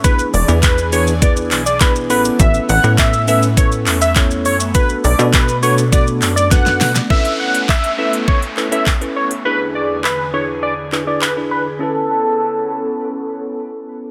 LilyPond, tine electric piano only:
\new Staff \with { instrumentName = "Tine electric piano" } { \time 4/4 \key a \major \tempo 4 = 102 <b d' e' gis' b'>8 r16 <b d' e' gis' b'>8 r16 <b d' e' gis' b'>16 r16 <b d' e' gis' b'>8. r16 <b d' e' gis' b'>8 <b cis' e' a' b'>8~ | <b cis' e' a' b'>8 r16 <b cis' e' a' b'>8 r16 <b cis' e' a' b'>16 r16 <b cis' e' a' b'>8. r16 <b cis' e' a' cis''>8. r16 | <b d' fis' a' b'>8 r16 <b d' fis' a' b'>8 r16 <b d' fis' a' b'>16 r16 <b d' fis' a' d''>8. r16 <b d' fis' a' b'>8. r16 | <cis' e' a' b'>4 r8 <cis' e' a' b'>8. r16 <cis' e' a' b'>16 <cis' e' a' b'>16 r16 <cis' e' a' b'>8 r16 |
<d' e' gis' b'>4 r8 <d' e' gis' b'>8. r16 <d' e' gis' b'>16 <d' e' gis' b'>16 r16 <d' e' gis' b'>8 r16 | <cis' e' a' b'>1 | }